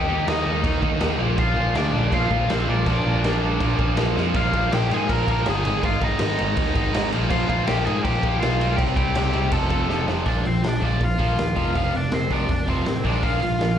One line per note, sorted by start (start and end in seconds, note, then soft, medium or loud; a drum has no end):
0.00 0.25 G4 medium
0.00 0.28 G5 loud
0.07 0.25 D#2 medium
0.07 0.25 D#3 medium
0.07 0.26 A#3 loud
0.07 0.26 D#4 loud
0.26 0.43 D#2 loud
0.26 0.43 D#3 loud
0.26 0.44 A#3 loud
0.26 0.44 D#4 loud
0.26 0.80 D#4 medium
0.26 0.80 D#5 medium
0.26 snare loud
0.26 crash medium
0.44 0.61 D#2 loud
0.44 0.61 D#3 loud
0.44 0.63 A#3 medium
0.44 0.63 D#4 loud
0.63 0.79 D#2 loud
0.63 0.80 D#3 medium
0.63 0.82 A#3 loud
0.63 0.81 D#4 loud
0.63 kick loud
0.63 crash medium
0.81 0.98 D#2 medium
0.81 0.97 D#3 medium
0.81 0.99 A#3 medium
0.81 0.99 D#4 loud
0.81 kick loud
0.99 1.20 D#2 medium
0.99 1.17 D#3 loud
0.99 1.18 A#3 loud
0.99 1.19 D#4 loud
0.99 snare loud
0.99 crash medium
1.18 1.35 A#1 medium
1.18 1.37 A#2 loud
1.18 1.38 F3 medium
1.18 1.38 A#3 loud
1.37 1.53 A#1 loud
1.37 1.54 A#2 loud
1.37 1.55 F3 loud
1.37 1.56 A#3 loud
1.37 1.73 F4 medium
1.37 1.77 F5 loud
1.37 kick loud
1.37 crash medium
1.55 1.72 A#1 loud
1.55 1.73 A#2 medium
1.55 1.74 F3 medium
1.55 1.75 A#3 loud
1.74 1.91 D2 loud
1.74 1.92 A#2 loud
1.74 1.93 F3 loud
1.74 1.94 A#3 loud
1.74 2.11 D4 medium
1.74 2.13 D5 loud
1.74 snare loud
1.74 crash medium
1.93 2.09 A#1 loud
1.93 2.11 A#2 loud
1.93 2.12 F3 loud
1.93 2.12 A#3 loud
2.11 2.28 A#1 loud
2.11 2.30 A#2 medium
2.11 2.31 F3 medium
2.11 2.31 A#3 medium
2.11 2.47 F4 medium
2.11 2.52 F5 loud
2.11 kick loud
2.11 crash medium
2.31 2.49 A#2 medium
2.31 2.46 A#2 medium
2.31 2.50 F3 medium
2.31 2.51 A#3 medium
2.31 kick medium
2.50 2.65 A#1 medium
2.50 2.68 A#2 medium
2.50 2.68 F3 loud
2.50 2.69 A#3 loud
2.50 2.67 C4 medium
2.50 2.68 C5 medium
2.50 snare loud
2.50 crash medium
2.68 2.83 A#1 medium
2.68 2.85 A#2 loud
2.68 2.86 F3 medium
2.68 2.87 A#3 medium
2.68 3.94 D4 medium
2.68 3.95 D5 medium
2.86 3.02 A#1 loud
2.86 3.04 A#2 loud
2.86 3.05 F3 loud
2.86 3.05 A#3 loud
2.86 kick loud
2.86 crash medium
3.06 3.21 A#1 medium
3.06 3.22 A#2 medium
3.06 3.22 F3 loud
3.06 3.23 A#3 loud
3.23 3.39 A#1 medium
3.23 3.39 A#2 medium
3.23 3.40 F3 loud
3.23 3.41 A#3 loud
3.23 snare loud
3.23 crash medium
3.41 3.58 A#1 loud
3.41 3.58 A#2 medium
3.41 3.60 F3 medium
3.41 3.60 A#3 medium
3.60 3.76 A#1 medium
3.60 3.78 A#2 medium
3.60 3.78 F3 loud
3.60 3.79 A#3 loud
3.60 kick loud
3.60 crash medium
3.79 3.94 A#1 medium
3.79 3.96 A#2 medium
3.79 3.96 F3 medium
3.79 3.97 A#3 medium
3.79 kick medium
3.97 4.13 A#1 medium
3.97 4.15 A#2 loud
3.97 4.15 F3 loud
3.97 4.16 A#3 loud
3.97 snare loud
3.97 crash medium
4.16 4.32 F2 medium
4.16 4.33 A#2 medium
4.16 4.33 F3 medium
4.16 4.34 A#3 loud
4.16 snare medium
4.34 4.69 A#1 medium
4.34 4.51 A#2 loud
4.34 4.51 F3 loud
4.34 4.52 A#3 loud
4.34 4.53 F4 medium
4.34 kick loud
4.34 crash medium
4.39 4.56 F5 medium
4.52 4.69 A#2 medium
4.52 4.70 F3 medium
4.52 4.71 A#3 loud
4.52 4.71 F4 medium
4.52 kick medium
4.52 crash medium
4.57 4.74 F5 medium
4.71 4.90 A#1 medium
4.71 4.88 A#2 medium
4.71 4.89 F3 medium
4.71 4.89 A#3 medium
4.71 4.89 G4 medium
4.71 4.92 G5 loud
4.71 snare loud
4.71 crash medium
4.89 5.07 G#2 medium
4.89 5.06 A#2 medium
4.89 5.07 F3 loud
4.89 5.08 A#3 loud
4.89 crash medium
4.94 5.09 G#4 medium
4.94 5.11 G#5 loud
5.08 5.43 A#1 medium
5.08 5.25 A#2 medium
5.08 5.25 F3 medium
5.08 5.26 A#3 loud
5.08 5.26 A#4 medium
5.08 kick loud
5.08 crash medium
5.12 5.30 A#5 loud
5.26 5.43 A#2 medium
5.26 5.44 F3 medium
5.26 5.45 A#3 medium
5.26 5.46 A#4 medium
5.26 kick medium
5.26 crash medium
5.31 5.49 A#5 loud
5.45 5.63 G1 medium
5.45 5.63 A#2 medium
5.45 5.63 F3 medium
5.45 5.63 A#3 medium
5.45 5.82 G#4 medium
5.45 snare loud
5.45 crash medium
5.49 5.86 G#5 medium
5.64 5.82 G#1 medium
5.64 5.81 G#2 medium
5.64 5.81 D#3 loud
5.64 5.82 G#3 loud
5.64 crash medium
5.82 6.00 G#1 medium
5.82 5.99 G#2 medium
5.82 6.00 D#3 loud
5.82 6.00 G#3 loud
5.82 6.01 F4 medium
5.82 6.03 F5 medium
5.82 kick loud
5.82 crash medium
6.00 6.19 G#1 medium
6.00 6.19 G#2 medium
6.00 6.19 D#3 medium
6.00 6.20 G#3 loud
6.00 7.10 D#4 medium
6.00 kick medium
6.00 crash medium
6.05 7.10 D#5 loud
6.19 6.37 G#1 medium
6.19 6.36 G#2 medium
6.19 6.37 D#3 loud
6.19 6.38 G#3 medium
6.19 snare loud
6.19 crash medium
6.37 6.57 G#1 medium
6.37 6.56 G#2 medium
6.37 6.57 D#3 loud
6.37 6.57 G#3 loud
6.37 crash medium
6.57 6.74 D#2 loud
6.57 6.74 G#2 loud
6.57 6.75 D#3 loud
6.57 6.76 G#3 loud
6.57 kick loud
6.57 crash medium
6.75 6.92 G#1 medium
6.75 6.92 G#2 medium
6.75 6.92 D#3 medium
6.75 6.94 G#3 loud
6.75 kick medium
6.75 crash medium
6.93 7.11 G#1 medium
6.93 7.11 G#2 medium
6.93 7.11 D#3 medium
6.93 7.12 G#3 loud
6.93 snare loud
6.93 crash medium
7.12 7.30 A#1 medium
7.12 7.28 A#2 medium
7.12 7.29 F3 loud
7.12 7.30 A#3 loud
7.12 crash medium
7.29 7.65 A#1 loud
7.29 7.46 A#2 loud
7.29 7.47 F3 loud
7.29 7.48 A#3 loud
7.29 7.47 F4 medium
7.29 7.48 F5 loud
7.29 kick loud
7.29 crash medium
7.48 7.66 A#2 medium
7.48 7.66 F3 loud
7.48 7.67 A#3 loud
7.48 7.66 F4 medium
7.48 7.68 F5 medium
7.48 kick medium
7.48 crash medium
7.66 7.85 A#1 medium
7.66 7.84 A#2 medium
7.66 7.85 F3 medium
7.66 7.85 A#3 loud
7.66 7.84 G4 medium
7.66 7.85 G5 medium
7.66 snare loud
7.66 crash medium
7.85 8.04 G#2 medium
7.85 8.02 A#2 medium
7.85 8.03 F3 loud
7.85 8.04 A#3 loud
7.85 8.03 G#4 medium
7.85 8.03 G#5 medium
7.85 crash medium
8.03 8.39 A#1 loud
8.03 8.22 A#2 medium
8.03 8.22 F3 loud
8.03 8.23 A#3 loud
8.03 8.39 G4 medium
8.03 8.42 G5 medium
8.03 kick loud
8.03 crash medium
8.23 8.40 A#2 medium
8.23 8.41 F3 medium
8.23 8.42 A#3 loud
8.23 kick loud
8.23 crash medium
8.40 8.76 B1 medium
8.40 8.57 A#2 medium
8.40 8.58 F3 medium
8.40 8.59 A#3 medium
8.40 8.76 F4 medium
8.40 8.79 F5 medium
8.40 snare loud
8.40 crash medium
8.59 8.77 A#2 medium
8.59 8.77 F3 medium
8.59 8.78 A#3 medium
8.59 crash medium
8.76 8.96 C2 loud
8.76 8.94 C3 loud
8.76 8.96 G3 loud
8.76 8.96 C4 loud
8.76 8.82 G4 medium
8.76 8.82 G5 loud
8.76 kick loud
8.76 crash medium
8.96 9.14 C2 medium
8.96 9.14 C3 medium
8.96 9.15 G3 medium
8.96 9.16 C4 loud
8.96 9.49 G4 medium
8.96 9.52 G5 medium
8.96 kick medium
8.96 crash medium
9.15 9.33 C2 medium
9.15 9.32 C3 medium
9.15 9.33 G3 medium
9.15 9.33 C4 loud
9.15 snare loud
9.15 crash medium
9.33 9.51 C2 medium
9.33 9.50 C3 medium
9.33 9.52 G3 loud
9.33 9.52 C4 loud
9.33 crash medium
9.51 9.69 F1 medium
9.51 9.68 F2 medium
9.51 9.69 C3 medium
9.51 9.69 F3 loud
9.51 10.05 A4 medium
9.51 10.05 A5 medium
9.51 kick loud
9.51 crash medium
9.69 9.88 F1 medium
9.69 9.87 F2 medium
9.69 9.88 C3 medium
9.69 9.89 F3 medium
9.69 kick medium
9.69 crash medium
9.88 10.07 F1 medium
9.88 10.06 F2 medium
9.88 10.07 C3 medium
9.88 10.07 F3 loud
9.88 snare medium
10.07 10.25 F1 medium
10.07 10.25 F2 medium
10.07 10.25 C3 medium
10.07 10.25 F3 medium
10.07 snare loud
10.25 10.42 A#1 medium
10.25 10.43 A#2 medium
10.25 10.43 F3 medium
10.25 10.44 A#3 medium
10.25 10.44 D4 medium
10.25 10.47 D5 medium
10.25 kick loud
10.25 open hi-hat medium
10.44 10.61 A#1 medium
10.44 10.62 A#2 medium
10.44 10.62 F3 medium
10.44 10.63 C4 medium
10.44 10.68 C5 medium
10.44 open hi-hat soft
10.63 10.80 A#1 medium
10.63 10.80 A#2 medium
10.63 10.80 F3 medium
10.63 10.82 D4 medium
10.63 snare loud
10.63 open hi-hat medium
10.68 10.85 D5 medium
10.81 10.97 A#1 medium
10.81 10.99 A#2 medium
10.81 10.99 F3 medium
10.81 11.00 A#3 loud
10.81 11.01 D4 medium
10.81 kick medium
10.81 open hi-hat soft
10.86 11.03 D5 medium
11.00 11.16 A#1 medium
11.00 11.17 A#2 medium
11.00 11.17 F3 medium
11.00 11.72 F4 medium
11.00 kick loud
11.00 open hi-hat medium
11.04 11.76 F5 loud
11.18 11.35 A#1 medium
11.18 11.36 A#2 medium
11.18 11.37 F3 medium
11.18 11.37 A#3 medium
11.18 kick medium
11.18 open hi-hat soft
11.37 11.54 D#2 medium
11.37 11.54 A#2 medium
11.37 11.55 F3 medium
11.37 snare loud
11.37 open hi-hat medium
11.55 11.72 F1 medium
11.55 11.73 F2 medium
11.55 11.74 C3 medium
11.55 11.74 F3 medium
11.55 kick medium
11.55 open hi-hat medium
11.74 11.91 F1 medium
11.74 11.92 F2 medium
11.74 11.93 C3 medium
11.74 11.93 F3 medium
11.74 11.93 F4 medium
11.74 11.94 F5 loud
11.74 kick loud
11.74 open hi-hat medium
11.94 12.10 F1 medium
11.94 12.10 F2 medium
11.94 12.11 C3 medium
11.94 12.12 D4 medium
11.94 12.14 D5 medium
11.94 open hi-hat medium
12.11 12.28 F1 medium
12.11 12.29 F2 medium
12.11 12.29 C3 medium
12.11 12.31 C4 medium
12.11 12.32 C5 medium
12.11 snare loud
12.11 open hi-hat medium
12.30 12.46 F1 medium
12.30 12.47 F2 medium
12.30 12.48 C3 medium
12.30 12.49 F3 loud
12.30 12.49 D4 medium
12.30 12.50 D5 medium
12.30 kick medium
12.30 open hi-hat medium
12.48 12.65 F1 medium
12.48 12.66 F2 medium
12.48 12.66 C3 medium
12.48 12.68 D4 medium
12.48 12.69 D5 medium
12.48 kick loud
12.48 open hi-hat medium
12.67 12.83 F1 medium
12.67 12.85 F2 medium
12.67 12.85 C3 medium
12.67 12.86 F3 medium
12.67 13.04 C4 medium
12.67 13.06 C5 medium
12.67 kick medium
12.67 open hi-hat medium
12.86 13.03 A1 medium
12.86 13.03 F2 medium
12.86 13.03 C3 medium
12.86 snare loud
12.86 open hi-hat medium
13.04 13.20 A#1 medium
13.04 13.21 A#2 medium
13.04 13.22 F3 medium
13.04 13.23 A#3 medium
13.04 13.23 D4 medium
13.04 13.23 D5 medium
13.04 kick medium
13.04 open hi-hat medium
13.22 13.39 A#1 medium
13.22 13.40 A#2 medium
13.22 13.41 F3 medium
13.22 13.41 A#3 medium
13.22 13.76 F4 medium
13.22 13.78 F5 loud
13.22 kick loud
13.22 open hi-hat medium
13.41 13.58 A#1 medium
13.41 13.58 A#2 medium
13.41 13.58 F3 medium
13.41 open hi-hat soft
13.59 13.77 A#1 medium
13.59 13.76 A#2 medium
13.59 13.77 F3 medium
13.59 snare loud
13.59 open hi-hat medium